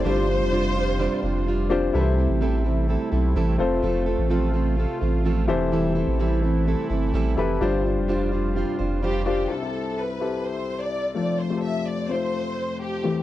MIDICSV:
0, 0, Header, 1, 6, 480
1, 0, Start_track
1, 0, Key_signature, 0, "major"
1, 0, Tempo, 472404
1, 55, Time_signature, 4, 2, 24, 8
1, 13442, End_track
2, 0, Start_track
2, 0, Title_t, "Violin section"
2, 0, Program_c, 0, 48
2, 69, Note_on_c, 0, 72, 90
2, 1462, Note_off_c, 0, 72, 0
2, 9183, Note_on_c, 0, 67, 70
2, 9403, Note_off_c, 0, 67, 0
2, 9426, Note_on_c, 0, 67, 72
2, 9645, Note_off_c, 0, 67, 0
2, 9661, Note_on_c, 0, 69, 66
2, 10139, Note_off_c, 0, 69, 0
2, 10146, Note_on_c, 0, 71, 57
2, 10621, Note_off_c, 0, 71, 0
2, 10625, Note_on_c, 0, 72, 61
2, 10981, Note_off_c, 0, 72, 0
2, 10984, Note_on_c, 0, 74, 69
2, 11328, Note_off_c, 0, 74, 0
2, 11340, Note_on_c, 0, 74, 62
2, 11562, Note_off_c, 0, 74, 0
2, 11580, Note_on_c, 0, 72, 69
2, 11819, Note_off_c, 0, 72, 0
2, 11821, Note_on_c, 0, 76, 66
2, 12042, Note_off_c, 0, 76, 0
2, 12063, Note_on_c, 0, 74, 67
2, 12300, Note_off_c, 0, 74, 0
2, 12305, Note_on_c, 0, 72, 69
2, 13021, Note_off_c, 0, 72, 0
2, 13025, Note_on_c, 0, 67, 65
2, 13442, Note_off_c, 0, 67, 0
2, 13442, End_track
3, 0, Start_track
3, 0, Title_t, "Grand piano"
3, 0, Program_c, 1, 0
3, 0, Control_c, 1, 64, 127
3, 46, Note_on_c, 1, 60, 66
3, 51, Note_on_c, 1, 62, 65
3, 56, Note_on_c, 1, 43, 58
3, 56, Note_on_c, 1, 65, 62
3, 61, Note_on_c, 1, 67, 68
3, 66, Control_c, 1, 64, 0
3, 66, Note_on_c, 1, 72, 88
3, 254, Control_c, 1, 64, 127
3, 735, Note_off_c, 1, 43, 0
3, 893, Note_off_c, 1, 60, 0
3, 896, Note_off_c, 1, 62, 0
3, 898, Note_off_c, 1, 65, 0
3, 901, Note_off_c, 1, 67, 0
3, 903, Note_off_c, 1, 72, 0
3, 1722, Note_on_c, 1, 60, 77
3, 1727, Note_on_c, 1, 62, 81
3, 1731, Note_on_c, 1, 65, 75
3, 1737, Note_on_c, 1, 67, 76
3, 1740, Note_on_c, 1, 72, 92
3, 1939, Note_off_c, 1, 60, 0
3, 1942, Note_off_c, 1, 62, 0
3, 1944, Note_off_c, 1, 65, 0
3, 1947, Note_off_c, 1, 67, 0
3, 1948, Note_off_c, 1, 72, 0
3, 1964, Note_on_c, 1, 64, 76
3, 1971, Note_on_c, 1, 67, 73
3, 1974, Note_on_c, 1, 48, 64
3, 1977, Note_on_c, 1, 69, 74
3, 1982, Note_on_c, 1, 71, 71
3, 1987, Control_c, 1, 64, 0
3, 2036, Note_off_c, 1, 71, 0
3, 2039, Note_on_c, 1, 72, 86
3, 2143, Control_c, 1, 64, 127
3, 2654, Note_off_c, 1, 48, 0
3, 2812, Note_off_c, 1, 64, 0
3, 2816, Note_off_c, 1, 67, 0
3, 2819, Note_off_c, 1, 69, 0
3, 2850, Note_off_c, 1, 72, 0
3, 3642, Note_on_c, 1, 60, 79
3, 3647, Note_on_c, 1, 65, 77
3, 3655, Note_on_c, 1, 69, 78
3, 3661, Note_on_c, 1, 72, 88
3, 3669, Control_c, 1, 64, 0
3, 3824, Control_c, 1, 64, 127
3, 4491, Note_off_c, 1, 60, 0
3, 4494, Note_off_c, 1, 65, 0
3, 4498, Note_off_c, 1, 69, 0
3, 4501, Note_off_c, 1, 72, 0
3, 5565, Note_on_c, 1, 64, 82
3, 5572, Note_on_c, 1, 67, 78
3, 5574, Note_on_c, 1, 52, 69
3, 5577, Note_on_c, 1, 69, 83
3, 5584, Note_on_c, 1, 72, 99
3, 5589, Control_c, 1, 64, 0
3, 5749, Control_c, 1, 64, 127
3, 6254, Note_off_c, 1, 52, 0
3, 6413, Note_off_c, 1, 64, 0
3, 6416, Note_off_c, 1, 67, 0
3, 6419, Note_off_c, 1, 69, 0
3, 6423, Note_off_c, 1, 72, 0
3, 7488, Note_on_c, 1, 64, 76
3, 7495, Note_on_c, 1, 67, 75
3, 7503, Note_on_c, 1, 69, 72
3, 7507, Note_on_c, 1, 71, 91
3, 7702, Note_off_c, 1, 64, 0
3, 7706, Note_off_c, 1, 67, 0
3, 7710, Note_off_c, 1, 69, 0
3, 7712, Note_off_c, 1, 71, 0
3, 7730, Note_on_c, 1, 62, 81
3, 7736, Note_on_c, 1, 65, 73
3, 7739, Note_on_c, 1, 43, 67
3, 7742, Note_on_c, 1, 67, 76
3, 7748, Note_on_c, 1, 72, 89
3, 7749, Control_c, 1, 64, 0
3, 7929, Control_c, 1, 64, 127
3, 8417, Note_off_c, 1, 43, 0
3, 8576, Note_off_c, 1, 62, 0
3, 8578, Note_off_c, 1, 65, 0
3, 8582, Note_off_c, 1, 67, 0
3, 8585, Note_off_c, 1, 72, 0
3, 9408, Note_on_c, 1, 62, 77
3, 9415, Note_on_c, 1, 65, 72
3, 9422, Note_on_c, 1, 67, 65
3, 9427, Note_on_c, 1, 72, 77
3, 9623, Note_off_c, 1, 62, 0
3, 9626, Note_off_c, 1, 65, 0
3, 9630, Note_off_c, 1, 67, 0
3, 9632, Note_off_c, 1, 72, 0
3, 9648, Note_on_c, 1, 60, 49
3, 9654, Note_on_c, 1, 64, 45
3, 9657, Note_on_c, 1, 36, 45
3, 9657, Note_on_c, 1, 48, 44
3, 9660, Note_on_c, 1, 67, 44
3, 9666, Note_on_c, 1, 69, 55
3, 9669, Control_c, 1, 64, 0
3, 9753, Note_off_c, 1, 60, 0
3, 9759, Note_off_c, 1, 64, 0
3, 9763, Note_off_c, 1, 67, 0
3, 9766, Note_off_c, 1, 69, 0
3, 9768, Note_on_c, 1, 60, 51
3, 9774, Note_on_c, 1, 64, 46
3, 9781, Note_on_c, 1, 67, 42
3, 9788, Note_on_c, 1, 69, 56
3, 9834, Control_c, 1, 64, 127
3, 10299, Note_off_c, 1, 60, 0
3, 10302, Note_off_c, 1, 64, 0
3, 10305, Note_off_c, 1, 67, 0
3, 10309, Note_off_c, 1, 69, 0
3, 10365, Note_on_c, 1, 60, 52
3, 10371, Note_on_c, 1, 64, 49
3, 10376, Note_on_c, 1, 67, 50
3, 10384, Note_on_c, 1, 69, 57
3, 11213, Note_off_c, 1, 60, 0
3, 11216, Note_off_c, 1, 64, 0
3, 11219, Note_off_c, 1, 67, 0
3, 11223, Note_off_c, 1, 69, 0
3, 11296, Note_off_c, 1, 36, 0
3, 11296, Note_off_c, 1, 48, 0
3, 11325, Note_on_c, 1, 57, 52
3, 11332, Note_on_c, 1, 60, 48
3, 11333, Note_on_c, 1, 29, 44
3, 11333, Note_on_c, 1, 41, 45
3, 11337, Note_on_c, 1, 65, 50
3, 11344, Note_on_c, 1, 69, 58
3, 11348, Control_c, 1, 64, 0
3, 11535, Control_c, 1, 64, 127
3, 11647, Note_off_c, 1, 57, 0
3, 11650, Note_off_c, 1, 60, 0
3, 11653, Note_off_c, 1, 65, 0
3, 11656, Note_off_c, 1, 69, 0
3, 11686, Note_on_c, 1, 57, 53
3, 11690, Note_on_c, 1, 60, 44
3, 11697, Note_on_c, 1, 65, 50
3, 11704, Note_on_c, 1, 67, 44
3, 11758, Note_off_c, 1, 67, 0
3, 11761, Note_on_c, 1, 69, 58
3, 12218, Note_off_c, 1, 57, 0
3, 12220, Note_off_c, 1, 60, 0
3, 12224, Note_off_c, 1, 65, 0
3, 12256, Note_off_c, 1, 69, 0
3, 12287, Note_on_c, 1, 57, 53
3, 12291, Note_on_c, 1, 60, 46
3, 12299, Note_on_c, 1, 65, 47
3, 12304, Note_on_c, 1, 72, 62
3, 13135, Note_off_c, 1, 57, 0
3, 13137, Note_off_c, 1, 60, 0
3, 13141, Note_off_c, 1, 65, 0
3, 13144, Note_off_c, 1, 72, 0
3, 13215, Note_off_c, 1, 29, 0
3, 13215, Note_off_c, 1, 41, 0
3, 13247, Note_on_c, 1, 57, 55
3, 13253, Note_on_c, 1, 60, 52
3, 13255, Note_on_c, 1, 40, 43
3, 13257, Note_on_c, 1, 52, 44
3, 13259, Note_on_c, 1, 64, 46
3, 13266, Note_on_c, 1, 67, 61
3, 13272, Control_c, 1, 64, 0
3, 13426, Control_c, 1, 64, 127
3, 13442, Note_off_c, 1, 40, 0
3, 13442, Note_off_c, 1, 52, 0
3, 13442, Note_off_c, 1, 57, 0
3, 13442, Note_off_c, 1, 60, 0
3, 13442, Note_off_c, 1, 64, 0
3, 13442, Note_off_c, 1, 67, 0
3, 13442, End_track
4, 0, Start_track
4, 0, Title_t, "Steel-string acoustic guitar"
4, 0, Program_c, 2, 25
4, 46, Note_on_c, 2, 55, 95
4, 55, Note_on_c, 2, 62, 84
4, 60, Note_on_c, 2, 65, 97
4, 65, Note_on_c, 2, 72, 100
4, 275, Note_off_c, 2, 72, 0
4, 287, Note_on_c, 2, 72, 61
4, 291, Note_off_c, 2, 55, 0
4, 292, Note_off_c, 2, 65, 0
4, 295, Note_off_c, 2, 62, 0
4, 304, Note_on_c, 2, 65, 56
4, 314, Note_on_c, 2, 62, 56
4, 522, Note_off_c, 2, 62, 0
4, 526, Note_on_c, 2, 55, 77
4, 529, Note_off_c, 2, 65, 0
4, 531, Note_off_c, 2, 72, 0
4, 534, Note_on_c, 2, 62, 79
4, 541, Note_on_c, 2, 65, 77
4, 549, Note_on_c, 2, 72, 75
4, 756, Note_off_c, 2, 72, 0
4, 768, Note_on_c, 2, 72, 66
4, 769, Note_off_c, 2, 65, 0
4, 770, Note_off_c, 2, 55, 0
4, 775, Note_off_c, 2, 62, 0
4, 781, Note_on_c, 2, 65, 54
4, 793, Note_on_c, 2, 62, 51
4, 1004, Note_off_c, 2, 62, 0
4, 1010, Note_off_c, 2, 65, 0
4, 1010, Note_on_c, 2, 55, 84
4, 1012, Note_off_c, 2, 72, 0
4, 1017, Note_on_c, 2, 62, 88
4, 1023, Note_on_c, 2, 65, 99
4, 1029, Note_on_c, 2, 72, 102
4, 1235, Note_off_c, 2, 72, 0
4, 1247, Note_on_c, 2, 72, 60
4, 1250, Note_off_c, 2, 65, 0
4, 1253, Note_off_c, 2, 55, 0
4, 1256, Note_off_c, 2, 62, 0
4, 1262, Note_on_c, 2, 65, 51
4, 1272, Note_on_c, 2, 62, 51
4, 1487, Note_off_c, 2, 62, 0
4, 1491, Note_off_c, 2, 72, 0
4, 1491, Note_on_c, 2, 55, 61
4, 1495, Note_off_c, 2, 65, 0
4, 1500, Note_on_c, 2, 62, 65
4, 1507, Note_on_c, 2, 65, 72
4, 1515, Note_on_c, 2, 72, 67
4, 1718, Note_off_c, 2, 72, 0
4, 1730, Note_on_c, 2, 72, 61
4, 1732, Note_off_c, 2, 65, 0
4, 1733, Note_off_c, 2, 55, 0
4, 1737, Note_off_c, 2, 62, 0
4, 1744, Note_on_c, 2, 65, 56
4, 1754, Note_on_c, 2, 62, 50
4, 1970, Note_on_c, 2, 48, 76
4, 1973, Note_off_c, 2, 72, 0
4, 1975, Note_on_c, 2, 52, 70
4, 1978, Note_off_c, 2, 62, 0
4, 1979, Note_on_c, 2, 55, 75
4, 1980, Note_off_c, 2, 65, 0
4, 1982, Note_on_c, 2, 60, 77
4, 1984, Note_on_c, 2, 64, 84
4, 1989, Note_on_c, 2, 69, 81
4, 2194, Note_off_c, 2, 69, 0
4, 2205, Note_off_c, 2, 64, 0
4, 2206, Note_on_c, 2, 69, 58
4, 2212, Note_off_c, 2, 60, 0
4, 2213, Note_off_c, 2, 48, 0
4, 2215, Note_off_c, 2, 52, 0
4, 2217, Note_off_c, 2, 55, 0
4, 2217, Note_on_c, 2, 64, 50
4, 2225, Note_on_c, 2, 60, 50
4, 2232, Note_on_c, 2, 55, 44
4, 2442, Note_off_c, 2, 55, 0
4, 2446, Note_off_c, 2, 60, 0
4, 2446, Note_on_c, 2, 48, 93
4, 2448, Note_off_c, 2, 64, 0
4, 2449, Note_on_c, 2, 52, 84
4, 2451, Note_off_c, 2, 69, 0
4, 2455, Note_on_c, 2, 55, 77
4, 2458, Note_on_c, 2, 60, 92
4, 2460, Note_on_c, 2, 64, 91
4, 2464, Note_on_c, 2, 69, 93
4, 2673, Note_off_c, 2, 69, 0
4, 2684, Note_off_c, 2, 64, 0
4, 2685, Note_on_c, 2, 69, 61
4, 2691, Note_off_c, 2, 48, 0
4, 2691, Note_off_c, 2, 60, 0
4, 2692, Note_off_c, 2, 52, 0
4, 2695, Note_off_c, 2, 55, 0
4, 2696, Note_on_c, 2, 64, 55
4, 2703, Note_on_c, 2, 60, 49
4, 2710, Note_on_c, 2, 55, 45
4, 2912, Note_off_c, 2, 55, 0
4, 2922, Note_off_c, 2, 60, 0
4, 2924, Note_on_c, 2, 55, 62
4, 2930, Note_off_c, 2, 64, 0
4, 2930, Note_off_c, 2, 69, 0
4, 2935, Note_on_c, 2, 60, 72
4, 2942, Note_on_c, 2, 64, 71
4, 2949, Note_on_c, 2, 69, 77
4, 3154, Note_off_c, 2, 69, 0
4, 3164, Note_off_c, 2, 64, 0
4, 3166, Note_on_c, 2, 69, 59
4, 3170, Note_off_c, 2, 55, 0
4, 3171, Note_off_c, 2, 60, 0
4, 3176, Note_on_c, 2, 64, 59
4, 3183, Note_on_c, 2, 60, 53
4, 3191, Note_on_c, 2, 55, 49
4, 3404, Note_off_c, 2, 55, 0
4, 3408, Note_off_c, 2, 60, 0
4, 3410, Note_on_c, 2, 48, 85
4, 3411, Note_off_c, 2, 69, 0
4, 3412, Note_off_c, 2, 64, 0
4, 3413, Note_on_c, 2, 52, 80
4, 3416, Note_on_c, 2, 55, 88
4, 3420, Note_on_c, 2, 60, 94
4, 3424, Note_on_c, 2, 64, 84
4, 3425, Note_on_c, 2, 69, 97
4, 3635, Note_off_c, 2, 69, 0
4, 3647, Note_on_c, 2, 69, 53
4, 3653, Note_off_c, 2, 48, 0
4, 3654, Note_off_c, 2, 52, 0
4, 3656, Note_off_c, 2, 55, 0
4, 3656, Note_off_c, 2, 64, 0
4, 3657, Note_off_c, 2, 60, 0
4, 3660, Note_on_c, 2, 65, 52
4, 3672, Note_on_c, 2, 60, 46
4, 3883, Note_off_c, 2, 60, 0
4, 3886, Note_on_c, 2, 53, 83
4, 3887, Note_off_c, 2, 65, 0
4, 3891, Note_off_c, 2, 69, 0
4, 3892, Note_on_c, 2, 57, 83
4, 3895, Note_on_c, 2, 60, 83
4, 3899, Note_on_c, 2, 65, 91
4, 3903, Note_on_c, 2, 69, 91
4, 4114, Note_off_c, 2, 69, 0
4, 4126, Note_on_c, 2, 69, 62
4, 4128, Note_off_c, 2, 65, 0
4, 4131, Note_off_c, 2, 53, 0
4, 4134, Note_off_c, 2, 57, 0
4, 4135, Note_off_c, 2, 60, 0
4, 4140, Note_on_c, 2, 65, 55
4, 4151, Note_on_c, 2, 60, 47
4, 4363, Note_off_c, 2, 60, 0
4, 4364, Note_on_c, 2, 53, 82
4, 4366, Note_off_c, 2, 65, 0
4, 4371, Note_off_c, 2, 69, 0
4, 4371, Note_on_c, 2, 57, 84
4, 4375, Note_on_c, 2, 60, 93
4, 4379, Note_on_c, 2, 65, 89
4, 4381, Note_on_c, 2, 69, 90
4, 4595, Note_off_c, 2, 69, 0
4, 4607, Note_on_c, 2, 69, 57
4, 4608, Note_off_c, 2, 65, 0
4, 4610, Note_off_c, 2, 53, 0
4, 4613, Note_off_c, 2, 57, 0
4, 4615, Note_off_c, 2, 60, 0
4, 4620, Note_on_c, 2, 65, 55
4, 4631, Note_on_c, 2, 60, 50
4, 4843, Note_off_c, 2, 60, 0
4, 4846, Note_on_c, 2, 57, 62
4, 4851, Note_off_c, 2, 69, 0
4, 4853, Note_off_c, 2, 65, 0
4, 4855, Note_on_c, 2, 60, 66
4, 4865, Note_on_c, 2, 65, 65
4, 4873, Note_on_c, 2, 69, 73
4, 5076, Note_off_c, 2, 69, 0
4, 5088, Note_on_c, 2, 69, 53
4, 5090, Note_off_c, 2, 65, 0
4, 5091, Note_off_c, 2, 57, 0
4, 5095, Note_off_c, 2, 60, 0
4, 5102, Note_on_c, 2, 65, 51
4, 5112, Note_on_c, 2, 60, 47
4, 5329, Note_off_c, 2, 60, 0
4, 5330, Note_on_c, 2, 53, 89
4, 5332, Note_off_c, 2, 69, 0
4, 5333, Note_off_c, 2, 65, 0
4, 5337, Note_on_c, 2, 57, 83
4, 5341, Note_on_c, 2, 60, 88
4, 5345, Note_on_c, 2, 65, 97
4, 5349, Note_on_c, 2, 69, 80
4, 5555, Note_off_c, 2, 69, 0
4, 5567, Note_on_c, 2, 69, 51
4, 5573, Note_off_c, 2, 53, 0
4, 5576, Note_off_c, 2, 57, 0
4, 5577, Note_off_c, 2, 65, 0
4, 5578, Note_off_c, 2, 60, 0
4, 5581, Note_on_c, 2, 64, 52
4, 5594, Note_on_c, 2, 60, 47
4, 5807, Note_off_c, 2, 60, 0
4, 5807, Note_on_c, 2, 52, 81
4, 5810, Note_off_c, 2, 64, 0
4, 5811, Note_off_c, 2, 69, 0
4, 5814, Note_on_c, 2, 55, 88
4, 5819, Note_on_c, 2, 60, 78
4, 5822, Note_on_c, 2, 64, 92
4, 5826, Note_on_c, 2, 69, 86
4, 6034, Note_off_c, 2, 69, 0
4, 6047, Note_off_c, 2, 64, 0
4, 6047, Note_on_c, 2, 69, 64
4, 6051, Note_off_c, 2, 52, 0
4, 6055, Note_off_c, 2, 55, 0
4, 6057, Note_off_c, 2, 60, 0
4, 6059, Note_on_c, 2, 64, 59
4, 6070, Note_on_c, 2, 60, 48
4, 6286, Note_off_c, 2, 60, 0
4, 6290, Note_off_c, 2, 64, 0
4, 6290, Note_on_c, 2, 52, 80
4, 6291, Note_off_c, 2, 69, 0
4, 6294, Note_on_c, 2, 55, 85
4, 6298, Note_on_c, 2, 60, 93
4, 6303, Note_on_c, 2, 64, 91
4, 6307, Note_on_c, 2, 69, 95
4, 6513, Note_off_c, 2, 69, 0
4, 6525, Note_on_c, 2, 69, 54
4, 6527, Note_off_c, 2, 64, 0
4, 6533, Note_off_c, 2, 52, 0
4, 6535, Note_off_c, 2, 55, 0
4, 6537, Note_off_c, 2, 60, 0
4, 6539, Note_on_c, 2, 64, 51
4, 6551, Note_on_c, 2, 60, 49
4, 6764, Note_off_c, 2, 60, 0
4, 6764, Note_on_c, 2, 55, 66
4, 6770, Note_off_c, 2, 64, 0
4, 6771, Note_off_c, 2, 69, 0
4, 6776, Note_on_c, 2, 60, 67
4, 6782, Note_on_c, 2, 64, 65
4, 6790, Note_on_c, 2, 69, 80
4, 6996, Note_off_c, 2, 69, 0
4, 7008, Note_on_c, 2, 69, 66
4, 7009, Note_off_c, 2, 64, 0
4, 7010, Note_off_c, 2, 55, 0
4, 7016, Note_off_c, 2, 60, 0
4, 7021, Note_on_c, 2, 64, 50
4, 7034, Note_on_c, 2, 60, 47
4, 7249, Note_off_c, 2, 60, 0
4, 7251, Note_off_c, 2, 64, 0
4, 7252, Note_off_c, 2, 69, 0
4, 7252, Note_on_c, 2, 52, 91
4, 7256, Note_on_c, 2, 55, 82
4, 7261, Note_on_c, 2, 60, 82
4, 7263, Note_on_c, 2, 64, 84
4, 7269, Note_on_c, 2, 69, 101
4, 7481, Note_off_c, 2, 69, 0
4, 7493, Note_on_c, 2, 69, 54
4, 7494, Note_off_c, 2, 52, 0
4, 7496, Note_off_c, 2, 55, 0
4, 7496, Note_off_c, 2, 64, 0
4, 7498, Note_off_c, 2, 60, 0
4, 7508, Note_on_c, 2, 64, 56
4, 7519, Note_on_c, 2, 60, 45
4, 7734, Note_on_c, 2, 55, 79
4, 7735, Note_off_c, 2, 69, 0
4, 7737, Note_off_c, 2, 60, 0
4, 7741, Note_on_c, 2, 62, 83
4, 7742, Note_off_c, 2, 64, 0
4, 7747, Note_on_c, 2, 65, 93
4, 7751, Note_on_c, 2, 72, 90
4, 7959, Note_off_c, 2, 72, 0
4, 7971, Note_on_c, 2, 72, 60
4, 7974, Note_off_c, 2, 65, 0
4, 7975, Note_off_c, 2, 55, 0
4, 7978, Note_off_c, 2, 62, 0
4, 7987, Note_on_c, 2, 65, 55
4, 7995, Note_on_c, 2, 62, 47
4, 8209, Note_off_c, 2, 62, 0
4, 8212, Note_on_c, 2, 55, 78
4, 8214, Note_off_c, 2, 65, 0
4, 8214, Note_off_c, 2, 72, 0
4, 8221, Note_on_c, 2, 62, 97
4, 8227, Note_on_c, 2, 65, 93
4, 8232, Note_on_c, 2, 72, 87
4, 8439, Note_off_c, 2, 72, 0
4, 8451, Note_on_c, 2, 72, 59
4, 8453, Note_off_c, 2, 65, 0
4, 8454, Note_off_c, 2, 55, 0
4, 8459, Note_off_c, 2, 62, 0
4, 8465, Note_on_c, 2, 65, 56
4, 8477, Note_on_c, 2, 62, 53
4, 8685, Note_off_c, 2, 62, 0
4, 8688, Note_on_c, 2, 55, 63
4, 8693, Note_off_c, 2, 65, 0
4, 8693, Note_off_c, 2, 72, 0
4, 8698, Note_on_c, 2, 62, 62
4, 8705, Note_on_c, 2, 65, 68
4, 8712, Note_on_c, 2, 72, 77
4, 8916, Note_off_c, 2, 72, 0
4, 8929, Note_off_c, 2, 65, 0
4, 8929, Note_on_c, 2, 72, 55
4, 8932, Note_off_c, 2, 55, 0
4, 8937, Note_off_c, 2, 62, 0
4, 8941, Note_on_c, 2, 65, 50
4, 8954, Note_on_c, 2, 62, 46
4, 9164, Note_off_c, 2, 62, 0
4, 9169, Note_off_c, 2, 65, 0
4, 9169, Note_on_c, 2, 55, 80
4, 9172, Note_off_c, 2, 72, 0
4, 9176, Note_on_c, 2, 62, 75
4, 9181, Note_on_c, 2, 65, 97
4, 9186, Note_on_c, 2, 72, 91
4, 9397, Note_off_c, 2, 72, 0
4, 9409, Note_on_c, 2, 72, 62
4, 9412, Note_off_c, 2, 65, 0
4, 9413, Note_off_c, 2, 55, 0
4, 9416, Note_off_c, 2, 62, 0
4, 9424, Note_on_c, 2, 65, 51
4, 9435, Note_on_c, 2, 62, 43
4, 9653, Note_off_c, 2, 72, 0
4, 9660, Note_off_c, 2, 65, 0
4, 9665, Note_off_c, 2, 62, 0
4, 13442, End_track
5, 0, Start_track
5, 0, Title_t, "Analog synth pad"
5, 0, Program_c, 3, 89
5, 54, Note_on_c, 3, 48, 78
5, 56, Note_on_c, 3, 65, 84
5, 59, Note_on_c, 3, 55, 69
5, 1955, Note_off_c, 3, 48, 0
5, 1956, Note_off_c, 3, 65, 0
5, 1958, Note_off_c, 3, 55, 0
5, 1968, Note_on_c, 3, 64, 79
5, 1971, Note_on_c, 3, 48, 71
5, 1973, Note_on_c, 3, 57, 68
5, 3635, Note_off_c, 3, 64, 0
5, 3647, Note_on_c, 3, 65, 89
5, 5539, Note_off_c, 3, 57, 0
5, 5552, Note_off_c, 3, 65, 0
5, 5578, Note_on_c, 3, 64, 78
5, 5580, Note_on_c, 3, 57, 69
5, 7716, Note_off_c, 3, 64, 0
5, 7717, Note_off_c, 3, 57, 0
5, 7742, Note_on_c, 3, 65, 77
5, 7746, Note_on_c, 3, 55, 61
5, 9613, Note_off_c, 3, 48, 0
5, 9640, Note_off_c, 3, 65, 0
5, 9642, Note_off_c, 3, 55, 0
5, 13442, End_track
6, 0, Start_track
6, 0, Title_t, "Sub bass"
6, 0, Program_c, 4, 38
6, 50, Note_on_c, 4, 31, 110
6, 413, Note_on_c, 4, 29, 91
6, 428, Note_off_c, 4, 31, 0
6, 1098, Note_off_c, 4, 29, 0
6, 1251, Note_on_c, 4, 29, 92
6, 1937, Note_off_c, 4, 29, 0
6, 1973, Note_on_c, 4, 36, 105
6, 2309, Note_off_c, 4, 36, 0
6, 2331, Note_on_c, 4, 33, 92
6, 3017, Note_off_c, 4, 33, 0
6, 3172, Note_on_c, 4, 35, 96
6, 3397, Note_off_c, 4, 35, 0
6, 3411, Note_on_c, 4, 33, 100
6, 3636, Note_off_c, 4, 33, 0
6, 3651, Note_on_c, 4, 29, 87
6, 3876, Note_off_c, 4, 29, 0
6, 3892, Note_on_c, 4, 29, 108
6, 4228, Note_off_c, 4, 29, 0
6, 4252, Note_on_c, 4, 33, 90
6, 4938, Note_off_c, 4, 33, 0
6, 5097, Note_on_c, 4, 33, 97
6, 5575, Note_on_c, 4, 28, 94
6, 5590, Note_off_c, 4, 33, 0
6, 6134, Note_off_c, 4, 28, 0
6, 6172, Note_on_c, 4, 33, 93
6, 6858, Note_off_c, 4, 33, 0
6, 7011, Note_on_c, 4, 31, 94
6, 7237, Note_off_c, 4, 31, 0
6, 7251, Note_on_c, 4, 33, 92
6, 7477, Note_off_c, 4, 33, 0
6, 7495, Note_on_c, 4, 29, 86
6, 7718, Note_off_c, 4, 29, 0
6, 7735, Note_on_c, 4, 31, 108
6, 8093, Note_on_c, 4, 29, 88
6, 8109, Note_off_c, 4, 31, 0
6, 8779, Note_off_c, 4, 29, 0
6, 8938, Note_on_c, 4, 29, 91
6, 9621, Note_off_c, 4, 29, 0
6, 13442, End_track
0, 0, End_of_file